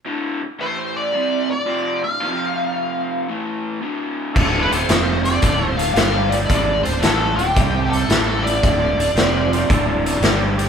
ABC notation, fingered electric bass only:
X:1
M:4/4
L:1/8
Q:"Swing" 1/4=112
K:Dm
V:1 name="Fingered electric bass" clef=bass
z8 | z8 | D,,, D,,, F,,,2 D,,,2 G,,,2 | ^G,,, D,,, A,,, D,,, C,,2 A,,,2 |
D,,, D,,, F,,,2 D,,,2 G,,,2 |]